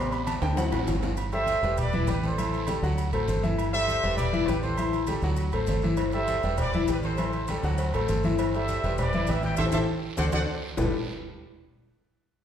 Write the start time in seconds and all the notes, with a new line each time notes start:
Already playing: A1 C3 G3 B3 C6
0.12 B5, high conga, low agogo, maracas
0.27 A5, cowbell, high conga, low agogo, short guiro, maracas
0.42 D2 G5, cowbell, high bongo, high timbale, short guiro, maracas
0.57 E3 F#3 C4 F#5, cowbell, high bongo, low timbale, low agogo, long guiro, maracas
0.72 A1, cowbell, low bongo, high conga, low timbale, low agogo, maracas
0.87 G1, cowbell, low bongo, high conga, low timbale, low agogo, short guiro, maracas
1.03 cowbell, low bongo, high conga, low timbale, short guiro, maracas
1.17 high conga, low agogo, long guiro, maracas
1.32 G3 G4 A4 C5 E5, high conga, low agogo, maracas
1.47 high conga, short guiro, maracas
1.62 E1 G3 G4 B4, high conga, low agogo, short guiro, maracas
1.78 B4 D5, high conga, low conga, low agogo, long guiro, maracas
1.92 E3 E4 E5, high conga, low conga, maracas
2.07 A1 G3 G4 B4, high conga, low agogo, short guiro, maracas
2.23 A4 C5, high conga, short guiro, maracas
2.38 E3 E4 E5, high conga, low agogo, long guiro, maracas
2.53 high conga, low agogo, maracas
2.67 G3 G4 A4, high conga, low agogo, short guiro, maracas
2.82 D2 F#3 F#4 F#5, high conga, short guiro, maracas
2.98 high conga, low agogo, long guiro, maracas
3.12 A1 A3 A4 C5, high conga, low agogo, maracas
3.28 G1 A3 A4 C5, high conga, low agogo, short guiro, maracas
3.43 E3 E4 E5, high conga, short guiro, maracas
3.58 high conga, low agogo, long guiro, maracas
3.73 G3 G4 A4 C5 E5, high conga, low agogo, maracas
3.88 high conga, short guiro, maracas
4.03 E1 G3 G4 B4, low agogo, short guiro, maracas
4.17 B4 D5, high conga, low conga, low agogo, long guiro, maracas
4.32 E3 E4 E5, high conga, maracas
4.47 A1 G3 G4 B4, high conga, low timbale, low agogo, short guiro, maracas
4.62 A4 C5, high conga, short guiro, maracas
4.77 E3 E4 E5, low agogo, long guiro, maracas
4.93 high conga, low agogo, maracas
5.07 G3 G4 A4, high conga, low agogo, short guiro, maracas
5.22 D2 F#3 F#4 F#5, high conga, short guiro, maracas
5.36 high conga, low agogo, long guiro, maracas
5.52 A1 A3 A4 C5, high conga, low agogo, maracas
5.67 G1 A3 A4 C5, high conga, low timbale, low agogo, short guiro, maracas
5.82 E3 E4 E5, high conga, short guiro, maracas
5.97 cowbell, high conga, low agogo, long guiro, maracas
6.12 G3 G4 A4 C5 E5, high conga, low agogo, maracas
6.28 cowbell, high conga, short guiro, maracas
6.43 E1 G3 G4 B4, low agogo, short guiro, maracas
6.58 B4 D5, cowbell, high conga, low conga, low agogo, long guiro, maracas
6.73 E3 E4 E5, high conga, maracas
6.88 A1 G3 G4 B4, cowbell, high conga, low timbale, low agogo, short guiro, maracas
7.03 A4 C5, cowbell, high conga, short guiro, maracas
7.17 E3 E4 E5, cowbell, high conga, low agogo, long guiro, maracas
7.33 high conga, low agogo, maracas
7.48 G3 G4 A4, cowbell, high conga, low agogo, short guiro, maracas
7.63 D2 F#3 F#4 F#5, cowbell, high conga, short guiro, maracas
7.78 cowbell, high conga, low agogo, long guiro, maracas
7.94 A1 A3 A4 C5, cowbell, high conga, low agogo, maracas
8.08 G1 A3 A4 C5, cowbell, high conga, low agogo, short guiro, maracas
8.23 E3 E4 E5, cowbell, high conga, short guiro, maracas
8.39 cowbell, high conga, low agogo, long guiro, maracas
8.54 G3 G4 A4 C5 E5, high conga, low agogo, maracas
8.68 cowbell, high conga, short guiro, maracas
8.83 E1 G3 G4 B4, high conga, low agogo, short guiro, maracas
8.98 B4 D5, cowbell, high conga, low conga, low agogo, long guiro, maracas
9.13 E3 E4 E5, high conga, maracas
9.27 A1 G3 G4 B4, cowbell, high conga, low agogo, short guiro, maracas
9.31 E5
9.42 E5 G5, cowbell, high conga, short guiro, maracas
9.57 A1 E4 G4 A4 C5 E5, cowbell, high conga, high timbale, long guiro, maracas
9.72 A1 E4 G4 A4 C5 E5, cowbell, high conga, high timbale, long guiro, maracas
10.17 D2 D4 F#4 A4 C5 D5 F#5, cowbell, high conga, high timbale, long guiro, maracas
10.32 D2 D4 F#4 A4 C5 D5 F#5, cowbell, high conga, high timbale, long guiro, maracas
10.77 G1 G3 D4 E4 G4 A4 B4, low bongo, low conga, low timbale, long guiro, maracas